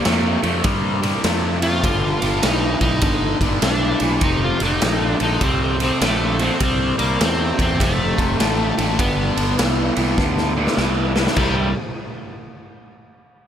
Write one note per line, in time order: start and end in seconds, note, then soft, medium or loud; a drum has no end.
0.00 0.39 A#3 medium
0.00 0.57 A#3 medium
0.00 0.58 D4 medium
0.00 0.58 E4 medium
0.00 0.59 G4 medium
0.04 0.36 F2 medium
0.04 0.39 C3 medium
0.04 0.39 A3 medium
0.04 snare loud
0.04 ride medium
0.42 0.60 F2 medium
0.42 0.62 C3 medium
0.42 0.62 A3 medium
0.42 ride medium
0.62 1.12 G2 medium
0.62 0.98 C3 medium
0.62 0.99 G3 medium
0.62 0.98 A#3 medium
0.62 0.99 D4 medium
0.62 0.99 E4 medium
0.62 0.99 A#4 medium
0.62 kick loud
0.62 ride medium
1.00 1.21 C3 medium
1.00 1.21 G3 medium
1.00 1.77 A#3 medium
1.00 1.77 D4 medium
1.00 1.77 E4 medium
1.00 1.78 G4 medium
1.00 ride medium
1.24 1.85 F2 medium
1.24 1.58 C3 medium
1.24 1.59 A3 medium
1.24 snare loud
1.24 ride medium
1.62 1.81 C3 medium
1.62 1.82 A3 medium
1.62 2.46 F4 loud
1.62 ride medium
1.80 2.18 G2 medium
1.80 2.94 A3 medium
1.80 2.94 B3 medium
1.80 2.94 D4 medium
1.80 2.95 F4 medium
1.80 kick loud
1.84 2.14 G1 medium
1.84 2.18 D3 loud
1.84 ride loud
2.22 2.39 G1 medium
2.22 2.41 G2 medium
2.22 2.41 D3 medium
2.22 ride medium
2.42 2.74 B1 medium
2.42 2.78 G2 medium
2.42 2.78 E3 medium
2.42 2.80 D#4 loud
2.42 snare loud
2.42 ride medium
2.81 2.98 B1 medium
2.81 3.01 G2 medium
2.81 3.01 E3 medium
2.81 3.58 D#4 loud
2.81 kick medium
2.81 ride medium
3.01 3.33 G1 medium
3.01 3.37 G2 medium
3.01 3.37 D3 medium
3.01 3.37 A3 medium
3.01 3.37 B3 medium
3.01 3.37 D4 medium
3.01 3.38 F4 medium
3.01 kick loud
3.01 ride medium
3.41 3.58 G1 medium
3.41 3.61 G2 medium
3.41 3.61 D3 medium
3.41 4.16 A3 medium
3.41 4.16 B3 medium
3.41 4.17 D4 medium
3.41 4.17 F4 medium
3.41 kick medium
3.41 ride medium
3.62 3.93 B1 medium
3.62 3.97 G2 medium
3.62 3.97 E3 loud
3.62 4.23 D4 loud
3.62 snare loud
3.62 ride medium
4.00 4.18 B1 medium
4.00 4.20 G2 medium
4.00 4.20 E3 medium
4.00 ride medium
4.21 4.53 F1 medium
4.21 4.57 F2 medium
4.21 4.57 C3 loud
4.21 5.34 A3 medium
4.21 5.35 C4 medium
4.21 5.35 D#4 medium
4.21 4.43 D#4 medium
4.21 5.35 G4 medium
4.21 kick loud
4.21 ride medium
4.44 4.63 F4 loud
4.60 4.78 F1 medium
4.60 4.80 F2 medium
4.60 4.80 C3 medium
4.60 ride medium
4.65 5.08 D#4 medium
4.81 5.13 A#1 medium
4.81 5.16 F2 medium
4.81 5.16 D3 medium
4.81 snare loud
4.81 ride medium
5.08 5.22 D4 medium
5.20 5.38 A#1 medium
5.20 5.39 F2 medium
5.20 5.39 D3 medium
5.20 5.43 D#4 medium
5.20 ride medium
5.41 5.90 C2 medium
5.41 5.76 F2 medium
5.41 5.76 C3 medium
5.41 5.76 A3 medium
5.41 5.77 C4 medium
5.41 5.82 C4 loud
5.41 5.77 D#4 medium
5.41 5.77 G4 medium
5.41 kick loud
5.41 ride medium
5.79 5.99 F2 medium
5.79 5.99 C3 medium
5.79 6.55 A3 medium
5.79 6.56 C4 medium
5.79 6.56 D#4 medium
5.79 6.56 G4 medium
5.79 ride medium
5.83 6.03 C4 medium
6.01 6.49 A#1 medium
6.01 6.35 F2 medium
6.01 6.36 D3 loud
6.01 6.42 A3 medium
6.01 snare loud
6.01 ride medium
6.39 6.58 F2 medium
6.39 6.58 D3 medium
6.39 6.62 C4 medium
6.39 ride medium
6.59 6.92 C2 medium
6.59 6.94 C3 medium
6.59 6.94 G3 loud
6.59 7.72 A#3 medium
6.59 7.73 D4 medium
6.59 7.73 E4 medium
6.59 7.73 G4 medium
6.59 kick loud
6.59 ride medium
6.64 6.99 C4 medium
6.98 7.16 C2 medium
6.98 7.17 C3 medium
6.98 7.18 G3 medium
6.98 7.21 A#3 medium
6.98 ride medium
7.19 7.51 E2 medium
7.19 7.54 C3 medium
7.19 7.54 A3 medium
7.19 snare loud
7.19 ride medium
7.24 7.60 C4 medium
7.57 7.82 E2 medium
7.57 7.77 C3 medium
7.57 7.77 A3 medium
7.57 kick medium
7.57 ride medium
7.61 7.82 C4 medium
7.78 8.11 F1 medium
7.78 8.13 F2 medium
7.78 8.14 C3 loud
7.78 8.14 A3 medium
7.78 8.99 A3 medium
7.78 8.14 C4 medium
7.78 8.15 D#4 medium
7.78 8.15 G4 medium
7.78 kick loud
7.78 ride loud
8.16 8.35 F1 medium
8.16 8.36 F2 medium
8.16 8.37 C3 medium
8.16 8.94 A3 medium
8.16 8.94 C4 medium
8.16 8.94 D#4 medium
8.16 kick medium
8.16 ride medium
8.21 8.95 G4 medium
8.38 8.71 A1 medium
8.38 8.73 F2 medium
8.38 8.73 D3 medium
8.38 snare loud
8.38 ride medium
8.77 8.95 A1 medium
8.77 8.97 F2 medium
8.77 8.97 D3 medium
8.77 ride medium
8.98 9.30 G1 medium
8.98 9.33 G2 medium
8.98 9.33 D3 medium
8.98 10.12 A3 medium
8.98 11.12 B3 medium
8.98 10.12 B3 medium
8.98 10.12 D4 medium
8.98 kick loud
8.98 ride medium
9.02 10.13 F4 medium
9.36 9.54 G1 medium
9.36 9.56 G2 medium
9.36 9.56 D3 medium
9.36 ride medium
9.57 9.90 C2 medium
9.57 9.92 G2 medium
9.57 9.93 E3 medium
9.57 snare loud
9.57 ride medium
9.96 10.14 C2 medium
9.96 10.16 G2 medium
9.96 10.16 E3 medium
9.96 ride medium
10.17 10.66 D2 medium
10.17 10.52 G2 medium
10.17 10.52 D3 medium
10.17 10.54 A3 medium
10.17 10.53 B3 medium
10.17 10.54 D4 medium
10.17 10.54 F4 medium
10.17 kick loud
10.17 snare medium
10.37 snare medium
10.57 10.76 G2 medium
10.57 10.76 D3 medium
10.57 11.32 A3 medium
10.57 11.33 B3 medium
10.57 11.32 D4 medium
10.57 11.33 G4 medium
10.67 snare medium
10.77 11.26 C2 medium
10.77 11.12 G2 medium
10.77 11.12 E3 medium
10.77 snare medium
11.15 11.35 G2 medium
11.15 11.35 E3 medium
11.15 snare medium
11.27 snare medium
11.36 11.73 C2 medium
11.36 11.68 C3 medium
11.36 11.68 G3 medium
11.36 11.73 G3 medium
11.36 11.68 A#3 loud
11.36 11.74 D4 medium
11.36 11.69 E4 loud
11.36 kick loud
11.36 crash medium
11.41 11.75 G3 medium
11.41 11.75 A#3 medium
11.41 11.75 E4 medium